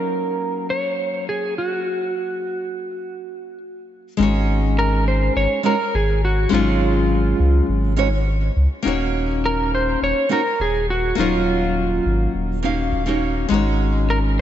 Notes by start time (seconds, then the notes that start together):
Already playing: F#3 A#3 C#4 D#4 A#4
0.70 C#5
1.29 G#4
1.58 F#4
4.17 G#1 G#3 C#4 D#4 F#4
4.22 C#5
4.79 A#4
5.08 C5
5.36 G#1 C#5
5.63 G#3 C#4 D#4 F#4 A#4 C#5
5.95 G#1 G#4
6.25 F#4
6.49 G#1 G#3 C#4 D#4
6.53 F#3 F4 C#5
7.39 C#2
7.69 G#1
7.96 G#3 C#4 D#4 F#4 C#5
8.56 C#2
8.82 D#1 A#3 C#4 D#4 F#4
8.88 C#5
9.46 A#4
9.75 C5
10.02 D#1 C#5
10.29 A#3 C#4 D#4 F#4 A#4 C#5
10.60 D#1 G#4
10.90 F#4
11.15 D#1 A#3 C#4 D#4
11.19 F#3 F4 C#5
12.06 G#1
12.35 D#1
12.62 A#3 C#4 D#4 F#4 F5
12.93 D#1
13.06 A#3 C#4 D#4 F#4 C#5
13.49 G#1 G#3 C#4 D#4 F#4
13.54 C#5
14.10 A#4